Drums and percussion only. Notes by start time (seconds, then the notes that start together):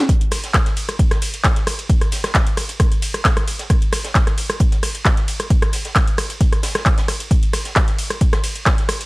0.09 kick, closed hi-hat
0.21 closed hi-hat
0.31 cross-stick, closed hi-hat, open hi-hat, ride
0.44 snare, closed hi-hat
0.54 kick, cross-stick, snare, clap, closed hi-hat
0.66 snare, closed hi-hat
0.76 closed hi-hat, open hi-hat, ride
0.89 cross-stick, closed hi-hat
0.99 kick, closed hi-hat
1.11 cross-stick, snare, closed hi-hat
1.22 closed hi-hat, open hi-hat, ride
1.34 closed hi-hat
1.44 kick, cross-stick, snare, clap, closed hi-hat
1.56 snare, closed hi-hat
1.67 cross-stick, closed hi-hat, open hi-hat, ride
1.79 closed hi-hat
1.89 kick, closed hi-hat
2.01 cross-stick, closed hi-hat
2.12 snare, closed hi-hat, open hi-hat, ride
2.24 cross-stick, snare, closed hi-hat
2.34 kick, snare, clap, closed hi-hat
2.47 closed hi-hat
2.57 cross-stick, open hi-hat, ride
2.69 closed hi-hat
2.80 kick, cross-stick, closed hi-hat
2.92 closed hi-hat
3.02 closed hi-hat, open hi-hat, ride
3.14 cross-stick, closed hi-hat
3.25 kick, snare, clap, closed hi-hat
3.37 cross-stick, snare, closed hi-hat
3.48 closed hi-hat, open hi-hat, ride
3.59 snare, closed hi-hat
3.69 kick, cross-stick, closed hi-hat
3.82 closed hi-hat
3.93 cross-stick, closed hi-hat, open hi-hat, ride
4.04 snare, closed hi-hat
4.15 kick, snare, clap, closed hi-hat
4.27 cross-stick, snare, closed hi-hat
4.38 closed hi-hat, open hi-hat, ride
4.50 cross-stick, closed hi-hat
4.60 kick, closed hi-hat
4.72 snare, closed hi-hat
4.83 cross-stick, closed hi-hat, open hi-hat, ride
4.95 closed hi-hat
5.05 kick, cross-stick, snare, clap, closed hi-hat
5.17 snare, closed hi-hat
5.28 closed hi-hat, open hi-hat, ride
5.40 cross-stick, closed hi-hat
5.50 kick, closed hi-hat
5.62 cross-stick, closed hi-hat
5.73 snare, closed hi-hat, open hi-hat, ride
5.85 snare, closed hi-hat
5.96 kick, cross-stick, snare, clap, closed hi-hat
6.07 closed hi-hat
6.17 cross-stick, open hi-hat, ride
6.30 closed hi-hat
6.41 kick, closed hi-hat
6.53 cross-stick, closed hi-hat
6.63 snare, closed hi-hat, open hi-hat, ride
6.75 cross-stick, snare, closed hi-hat
6.86 kick, clap, closed hi-hat
6.98 snare, closed hi-hat
7.08 cross-stick, snare, open hi-hat, ride
7.20 closed hi-hat
7.31 kick, closed hi-hat
7.43 closed hi-hat
7.53 cross-stick, closed hi-hat, open hi-hat, ride
7.65 snare, closed hi-hat
7.76 kick, cross-stick, snare, clap, closed hi-hat
7.88 snare, closed hi-hat
7.99 closed hi-hat, open hi-hat, ride
8.10 cross-stick, closed hi-hat
8.21 kick, closed hi-hat
8.33 cross-stick, snare, closed hi-hat
8.44 closed hi-hat, open hi-hat, ride
8.56 closed hi-hat
8.66 kick, cross-stick, snare, clap, closed hi-hat
8.78 snare, closed hi-hat
8.88 cross-stick, closed hi-hat, open hi-hat, ride
9.01 closed hi-hat